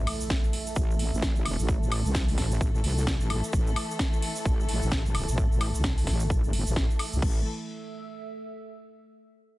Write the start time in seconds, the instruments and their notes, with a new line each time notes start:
Already playing: string section E3 A3 A4, ambient pad A3 A4 E5 E6, impact
0.07 open hi-hat, high woodblock
0.21 shaker
0.30 kick, snare, shaker
0.44 shaker
0.53 open hi-hat
0.67 shaker
0.76 wobble bass A1, kick, shaker
0.91 shaker
0.99 open hi-hat
1.13 wobble bass A1, shaker
1.22 kick, snare, shaker
1.36 shaker
1.46 open hi-hat, high woodblock
1.59 wobble bass A1, shaker
1.68 kick, shaker
1.82 wobble bass A1, shaker
1.92 open hi-hat, high woodblock
2.05 wobble bass C2, shaker
2.15 kick, snare, shaker
2.28 open hi-hat, shaker
2.38 wobble bass A1, kick, snare, open hi-hat
2.51 shaker
2.61 kick, shaker
2.75 shaker
2.84 wobble bass C2, open hi-hat
2.98 shaker
3.07 kick, snare, shaker
3.20 wobble bass A1, shaker
3.30 open hi-hat, high woodblock
3.44 shaker
3.53 wobble bass A1, kick, shaker
3.67 shaker
3.76 open hi-hat, high woodblock
3.91 shaker
3.99 kick, snare, shaker
4.13 shaker
4.22 open hi-hat
4.36 shaker
4.45 wobble bass A1, kick, shaker
4.60 shaker
4.69 open hi-hat
4.82 wobble bass A1, shaker
4.91 kick, snare, shaker
5.06 shaker
5.15 open hi-hat, high woodblock
5.28 wobble bass A1, shaker
5.38 kick, shaker
5.52 wobble bass A1, shaker
5.61 open hi-hat, high woodblock
5.75 wobble bass C2, shaker
5.83 kick, snare, shaker
5.98 open hi-hat, shaker
6.07 wobble bass A1, kick, snare, open hi-hat
6.20 shaker
6.30 kick, shaker
6.44 wobble bass G1, shaker
6.53 open hi-hat
6.67 wobble bass A1, shaker
6.76 kick, snare, shaker
6.90 shaker
6.99 open hi-hat, high woodblock
7.13 wobble bass C2, shaker
7.22 wobble bass A1, string section E3 A3 A4, ambient pad A3, kick, crash
7.31 ambient pad A4
7.38 ambient pad E5
7.44 ambient pad E6